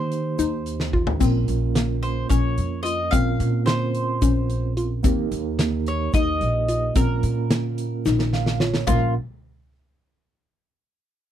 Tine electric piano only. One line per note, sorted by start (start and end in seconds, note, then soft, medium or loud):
0.00 1.17 A#3 medium
0.00 1.17 D#4 soft
0.00 1.18 G4 medium
0.00 1.18 C5 medium
1.19 3.08 A#3 medium
1.19 3.08 C#4 medium
1.19 3.09 F4 medium
1.19 3.09 A#4 medium
3.11 5.00 C4 medium
3.11 5.00 C#4 medium
3.11 5.00 F4 medium
3.11 5.01 A#4 medium
5.03 6.92 A#3 medium
5.03 6.92 D#4 medium
5.03 6.92 G4 medium
5.03 6.93 A#4 medium
6.94 8.83 A#3 medium
6.94 8.84 C#4 medium
6.94 8.84 F4 medium
6.94 8.85 A#4 medium
8.33 8.59 F5 medium
8.61 8.86 C#5 medium
8.88 9.13 A#3 medium
8.88 9.13 C#4 medium
8.88 9.13 F4 medium
8.88 9.13 A#4 medium